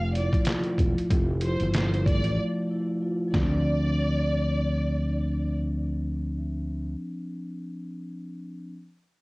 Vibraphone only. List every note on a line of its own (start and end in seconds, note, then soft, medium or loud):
0.00 0.77 F3 medium
0.00 0.79 A3 medium
0.00 0.15 F4 medium
0.15 1.41 E4 medium
0.47 1.74 F4 medium
0.77 1.08 F3 medium
1.09 2.36 F3 medium
1.42 2.69 E4 medium
2.07 3.34 A3 medium
2.37 3.27 F3 medium
2.70 3.34 E4 medium
3.02 3.34 F4 medium
3.28 6.88 F3 medium
3.34 6.94 C4 medium
3.40 7.01 D4 medium